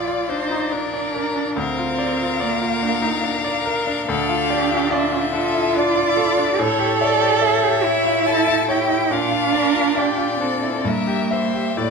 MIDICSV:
0, 0, Header, 1, 5, 480
1, 0, Start_track
1, 0, Tempo, 849858
1, 892, Time_signature, 3, 2, 24, 8
1, 1369, Tempo, 835655
1, 5209, Tempo, 872093
1, 6169, Tempo, 934579
1, 6707, End_track
2, 0, Start_track
2, 0, Title_t, "Violin"
2, 0, Program_c, 0, 40
2, 0, Note_on_c, 0, 74, 54
2, 875, Note_off_c, 0, 74, 0
2, 896, Note_on_c, 0, 77, 71
2, 2302, Note_off_c, 0, 77, 0
2, 2332, Note_on_c, 0, 77, 75
2, 2783, Note_off_c, 0, 77, 0
2, 2817, Note_on_c, 0, 76, 79
2, 3301, Note_on_c, 0, 74, 82
2, 3310, Note_off_c, 0, 76, 0
2, 3776, Note_off_c, 0, 74, 0
2, 3795, Note_on_c, 0, 73, 79
2, 4248, Note_off_c, 0, 73, 0
2, 4258, Note_on_c, 0, 76, 81
2, 4725, Note_on_c, 0, 81, 81
2, 4733, Note_off_c, 0, 76, 0
2, 4965, Note_off_c, 0, 81, 0
2, 4969, Note_on_c, 0, 79, 73
2, 5216, Note_on_c, 0, 77, 72
2, 5225, Note_off_c, 0, 79, 0
2, 5690, Note_on_c, 0, 74, 70
2, 5698, Note_off_c, 0, 77, 0
2, 6180, Note_on_c, 0, 76, 74
2, 6187, Note_off_c, 0, 74, 0
2, 6408, Note_off_c, 0, 76, 0
2, 6411, Note_on_c, 0, 76, 66
2, 6641, Note_on_c, 0, 74, 64
2, 6649, Note_off_c, 0, 76, 0
2, 6707, Note_off_c, 0, 74, 0
2, 6707, End_track
3, 0, Start_track
3, 0, Title_t, "Violin"
3, 0, Program_c, 1, 40
3, 0, Note_on_c, 1, 74, 68
3, 163, Note_on_c, 1, 72, 72
3, 171, Note_off_c, 1, 74, 0
3, 404, Note_on_c, 1, 70, 72
3, 413, Note_off_c, 1, 72, 0
3, 885, Note_off_c, 1, 70, 0
3, 888, Note_on_c, 1, 70, 80
3, 2298, Note_off_c, 1, 70, 0
3, 2323, Note_on_c, 1, 69, 72
3, 2558, Note_on_c, 1, 67, 75
3, 2566, Note_off_c, 1, 69, 0
3, 2801, Note_on_c, 1, 65, 72
3, 2810, Note_off_c, 1, 67, 0
3, 3039, Note_on_c, 1, 69, 81
3, 3047, Note_off_c, 1, 65, 0
3, 3278, Note_on_c, 1, 74, 86
3, 3287, Note_off_c, 1, 69, 0
3, 3765, Note_on_c, 1, 73, 92
3, 3774, Note_off_c, 1, 74, 0
3, 4000, Note_off_c, 1, 73, 0
3, 4004, Note_on_c, 1, 74, 85
3, 4247, Note_on_c, 1, 73, 89
3, 4255, Note_off_c, 1, 74, 0
3, 4730, Note_on_c, 1, 69, 76
3, 4739, Note_off_c, 1, 73, 0
3, 4966, Note_on_c, 1, 67, 70
3, 4975, Note_off_c, 1, 69, 0
3, 5208, Note_off_c, 1, 67, 0
3, 5220, Note_on_c, 1, 65, 71
3, 5450, Note_on_c, 1, 70, 79
3, 5459, Note_off_c, 1, 65, 0
3, 5690, Note_on_c, 1, 67, 75
3, 5698, Note_off_c, 1, 70, 0
3, 5924, Note_on_c, 1, 69, 63
3, 5932, Note_off_c, 1, 67, 0
3, 6174, Note_on_c, 1, 70, 69
3, 6182, Note_off_c, 1, 69, 0
3, 6412, Note_on_c, 1, 72, 72
3, 6419, Note_off_c, 1, 70, 0
3, 6648, Note_off_c, 1, 72, 0
3, 6651, Note_on_c, 1, 74, 77
3, 6707, Note_off_c, 1, 74, 0
3, 6707, End_track
4, 0, Start_track
4, 0, Title_t, "Grand piano"
4, 0, Program_c, 2, 0
4, 0, Control_c, 2, 64, 127
4, 0, Note_on_c, 2, 34, 63
4, 0, Note_on_c, 2, 65, 54
4, 0, Note_on_c, 2, 74, 57
4, 43, Note_off_c, 2, 65, 0
4, 43, Note_on_c, 2, 65, 55
4, 116, Note_off_c, 2, 74, 0
4, 166, Note_on_c, 2, 62, 54
4, 240, Note_off_c, 2, 65, 0
4, 286, Note_on_c, 2, 63, 50
4, 362, Note_off_c, 2, 62, 0
4, 405, Note_on_c, 2, 62, 52
4, 409, Note_off_c, 2, 63, 0
4, 528, Note_on_c, 2, 74, 52
4, 601, Note_off_c, 2, 62, 0
4, 647, Note_on_c, 2, 70, 60
4, 722, Note_off_c, 2, 74, 0
4, 764, Note_on_c, 2, 62, 51
4, 841, Note_off_c, 2, 70, 0
4, 864, Note_off_c, 2, 34, 0
4, 883, Note_on_c, 2, 38, 63
4, 888, Note_off_c, 2, 62, 0
4, 903, Control_c, 2, 64, 0
4, 982, Control_c, 2, 64, 127
4, 1006, Note_on_c, 2, 65, 55
4, 1121, Note_on_c, 2, 74, 60
4, 1200, Note_off_c, 2, 65, 0
4, 1246, Note_on_c, 2, 65, 58
4, 1317, Note_off_c, 2, 74, 0
4, 1356, Note_on_c, 2, 74, 64
4, 1438, Note_off_c, 2, 65, 0
4, 1479, Note_on_c, 2, 65, 61
4, 1554, Note_off_c, 2, 74, 0
4, 1600, Note_on_c, 2, 62, 59
4, 1674, Note_off_c, 2, 65, 0
4, 1711, Note_on_c, 2, 63, 50
4, 1793, Note_off_c, 2, 62, 0
4, 1835, Note_on_c, 2, 62, 55
4, 1837, Note_off_c, 2, 63, 0
4, 1955, Note_on_c, 2, 74, 63
4, 2030, Note_off_c, 2, 62, 0
4, 2077, Note_on_c, 2, 70, 68
4, 2151, Note_off_c, 2, 74, 0
4, 2200, Note_on_c, 2, 62, 64
4, 2272, Note_off_c, 2, 70, 0
4, 2296, Note_off_c, 2, 38, 0
4, 2322, Note_off_c, 2, 62, 0
4, 2324, Note_on_c, 2, 38, 72
4, 2334, Control_c, 2, 64, 0
4, 2423, Control_c, 2, 64, 127
4, 2441, Note_on_c, 2, 65, 68
4, 2562, Note_on_c, 2, 74, 71
4, 2633, Note_off_c, 2, 65, 0
4, 2681, Note_on_c, 2, 65, 67
4, 2753, Note_off_c, 2, 74, 0
4, 2795, Note_on_c, 2, 74, 75
4, 2873, Note_off_c, 2, 65, 0
4, 2919, Note_on_c, 2, 65, 62
4, 2990, Note_off_c, 2, 74, 0
4, 3037, Note_on_c, 2, 62, 64
4, 3113, Note_off_c, 2, 65, 0
4, 3162, Note_on_c, 2, 64, 54
4, 3234, Note_off_c, 2, 62, 0
4, 3279, Note_on_c, 2, 62, 68
4, 3284, Note_off_c, 2, 64, 0
4, 3399, Note_on_c, 2, 74, 64
4, 3476, Note_off_c, 2, 62, 0
4, 3520, Note_on_c, 2, 69, 70
4, 3596, Note_off_c, 2, 74, 0
4, 3637, Note_on_c, 2, 62, 63
4, 3716, Note_off_c, 2, 69, 0
4, 3745, Note_off_c, 2, 38, 0
4, 3760, Note_on_c, 2, 45, 75
4, 3762, Note_off_c, 2, 62, 0
4, 3779, Control_c, 2, 64, 0
4, 3878, Control_c, 2, 64, 127
4, 3878, Note_on_c, 2, 67, 67
4, 4003, Note_on_c, 2, 76, 70
4, 4073, Note_off_c, 2, 67, 0
4, 4116, Note_on_c, 2, 67, 63
4, 4195, Note_off_c, 2, 76, 0
4, 4237, Note_on_c, 2, 76, 73
4, 4311, Note_off_c, 2, 67, 0
4, 4361, Note_on_c, 2, 67, 64
4, 4432, Note_off_c, 2, 76, 0
4, 4487, Note_on_c, 2, 64, 58
4, 4555, Note_off_c, 2, 67, 0
4, 4604, Note_on_c, 2, 65, 52
4, 4679, Note_off_c, 2, 64, 0
4, 4725, Note_off_c, 2, 65, 0
4, 4726, Note_on_c, 2, 64, 59
4, 4844, Note_on_c, 2, 76, 70
4, 4919, Note_off_c, 2, 64, 0
4, 4965, Note_on_c, 2, 73, 64
4, 5038, Note_off_c, 2, 76, 0
4, 5088, Note_on_c, 2, 64, 57
4, 5159, Note_off_c, 2, 73, 0
4, 5182, Note_off_c, 2, 45, 0
4, 5207, Note_on_c, 2, 46, 66
4, 5209, Note_off_c, 2, 64, 0
4, 5219, Control_c, 2, 64, 0
4, 5315, Control_c, 2, 64, 127
4, 5322, Note_on_c, 2, 65, 67
4, 5437, Note_on_c, 2, 74, 68
4, 5511, Note_off_c, 2, 65, 0
4, 5556, Note_on_c, 2, 65, 61
4, 5628, Note_off_c, 2, 74, 0
4, 5673, Note_on_c, 2, 74, 58
4, 5749, Note_off_c, 2, 65, 0
4, 5798, Note_on_c, 2, 65, 58
4, 5869, Note_off_c, 2, 74, 0
4, 5921, Note_on_c, 2, 62, 50
4, 5994, Note_off_c, 2, 65, 0
4, 6042, Note_on_c, 2, 64, 46
4, 6119, Note_off_c, 2, 62, 0
4, 6146, Note_off_c, 2, 46, 0
4, 6165, Note_on_c, 2, 43, 63
4, 6167, Note_off_c, 2, 64, 0
4, 6177, Control_c, 2, 64, 0
4, 6281, Note_on_c, 2, 67, 54
4, 6282, Control_c, 2, 64, 127
4, 6402, Note_on_c, 2, 76, 55
4, 6474, Note_off_c, 2, 67, 0
4, 6520, Note_on_c, 2, 67, 51
4, 6597, Note_off_c, 2, 76, 0
4, 6631, Note_off_c, 2, 43, 0
4, 6640, Note_on_c, 2, 45, 65
4, 6645, Note_off_c, 2, 67, 0
4, 6658, Control_c, 2, 64, 0
4, 6707, Note_off_c, 2, 45, 0
4, 6707, End_track
5, 0, Start_track
5, 0, Title_t, "Cello"
5, 0, Program_c, 3, 42
5, 0, Note_on_c, 3, 65, 82
5, 170, Note_on_c, 3, 63, 89
5, 178, Note_off_c, 3, 65, 0
5, 412, Note_on_c, 3, 62, 82
5, 420, Note_off_c, 3, 63, 0
5, 891, Note_on_c, 3, 60, 95
5, 900, Note_off_c, 3, 62, 0
5, 1372, Note_on_c, 3, 58, 89
5, 1380, Note_off_c, 3, 60, 0
5, 1846, Note_off_c, 3, 58, 0
5, 2317, Note_on_c, 3, 62, 104
5, 3016, Note_off_c, 3, 62, 0
5, 3050, Note_on_c, 3, 65, 114
5, 3765, Note_on_c, 3, 69, 122
5, 3774, Note_off_c, 3, 65, 0
5, 4481, Note_on_c, 3, 64, 112
5, 4490, Note_off_c, 3, 69, 0
5, 4962, Note_off_c, 3, 64, 0
5, 4965, Note_on_c, 3, 64, 99
5, 5209, Note_on_c, 3, 62, 115
5, 5218, Note_off_c, 3, 64, 0
5, 5919, Note_off_c, 3, 62, 0
5, 5922, Note_on_c, 3, 60, 90
5, 6167, Note_on_c, 3, 58, 80
5, 6175, Note_off_c, 3, 60, 0
5, 6645, Note_off_c, 3, 58, 0
5, 6648, Note_on_c, 3, 58, 87
5, 6707, Note_off_c, 3, 58, 0
5, 6707, End_track
0, 0, End_of_file